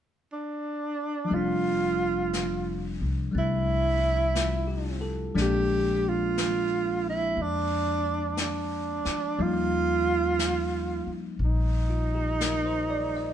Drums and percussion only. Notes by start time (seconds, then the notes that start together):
1.31 brush sweep
2.33 brush sweep, snare, hi-hat pedal
3.35 brush sweep
4.35 brush sweep, snare, hi-hat pedal
5.37 brush sweep, snare
6.38 brush sweep, snare, hi-hat pedal
7.38 brush sweep
8.37 brush sweep, snare, hi-hat pedal
9.05 snare
9.38 brush sweep
10.39 brush sweep, snare, hi-hat pedal
11.40 brush sweep
12.41 brush sweep, snare, hi-hat pedal